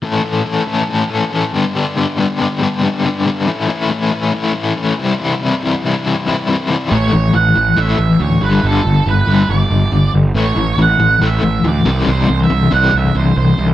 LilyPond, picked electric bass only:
\new Staff \with { instrumentName = "Picked electric bass" } { \clef bass \time 4/4 \key g \lydian \tempo 4 = 140 r1 | r1 | r1 | r1 |
a,,8 a,,8 a,,8 a,,8 a,,8 a,,8 d,8 g,,8 | g,,8 g,,8 g,,8 g,,8 g,,8 g,,8 g,,8 g,,8 | a,,8 a,,8 a,,8 a,,8 a,,8 a,,8 d,8 c,8 | c,8 c,8 c,8 c,8 c,8 c,8 c,8 c,8 | }